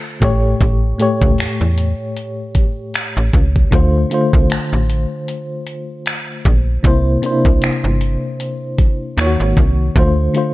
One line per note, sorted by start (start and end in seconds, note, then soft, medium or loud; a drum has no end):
0.20 0.55 A1 loud
0.20 0.86 A2 medium
0.20 0.86 A3 medium
0.20 0.87 G4 medium
0.20 kick medium
0.24 0.88 C#5 medium
0.61 0.94 A1 loud
0.61 kick loud
0.61 closed hi-hat medium
0.98 2.02 A2 medium
0.98 2.02 A3 medium
0.98 2.03 G4 medium
0.98 2.04 C#5 loud
0.98 closed hi-hat medium
1.22 1.36 C#2 medium
1.22 kick medium
1.38 1.48 E2 soft
1.38 finger snap loud
1.38 closed hi-hat medium
1.61 1.94 E2 medium
1.78 closed hi-hat medium
2.17 closed hi-hat medium
2.55 kick medium
2.55 closed hi-hat medium
2.94 finger snap loud
2.94 closed hi-hat medium
3.17 3.31 A1 medium
3.33 3.67 C#2 medium
3.33 kick medium
3.56 kick medium
3.71 4.06 D2 loud
3.71 3.99 D3 medium
3.71 4.00 A3 medium
3.71 4.00 F4 medium
3.71 kick loud
3.71 closed hi-hat medium
3.75 4.01 C5 medium
4.10 5.13 D3 medium
4.10 5.14 A3 medium
4.10 5.15 F4 medium
4.10 closed hi-hat medium
4.14 5.15 C5 medium
4.33 4.48 C2 medium
4.33 kick medium
4.50 4.59 A1 soft
4.50 finger snap loud
4.50 closed hi-hat medium
4.73 5.06 A1 medium
4.90 closed hi-hat medium
5.28 closed hi-hat medium
5.67 closed hi-hat medium
6.06 finger snap loud
6.06 closed hi-hat medium
6.45 6.79 A#1 loud
6.45 kick medium
6.83 7.17 C2 loud
6.83 7.11 C3 medium
6.83 7.11 A#3 medium
6.83 7.12 E4 medium
6.83 kick loud
6.83 closed hi-hat medium
6.87 7.13 C5 medium
7.22 8.25 C3 medium
7.22 8.26 A#3 medium
7.22 7.31 D4 medium
7.22 closed hi-hat medium
7.26 8.27 C5 medium
7.31 8.30 E4 medium
7.45 7.59 C2 medium
7.45 kick medium
7.62 7.71 G1 soft
7.62 finger snap medium
7.62 closed hi-hat medium
7.84 8.18 G1 medium
8.01 closed hi-hat medium
8.40 closed hi-hat medium
8.78 kick loud
8.78 closed hi-hat medium
9.17 9.37 D#2 loud
9.17 9.82 D#3 medium
9.17 9.83 A#3 medium
9.17 9.26 F4 medium
9.17 finger snap loud
9.17 closed hi-hat medium
9.21 9.84 C#5 medium
9.26 9.87 F#4 medium
9.40 9.54 G#1 loud
9.57 9.90 C2 loud
9.57 kick medium
9.95 10.29 D2 loud
9.95 10.23 D3 medium
9.95 10.23 A3 medium
9.95 10.24 F4 medium
9.95 10.25 C5 medium
9.95 kick loud
9.95 closed hi-hat medium
10.34 10.54 D3 medium
10.34 10.54 A3 medium
10.34 10.54 F4 medium
10.34 closed hi-hat medium
10.38 10.54 C5 medium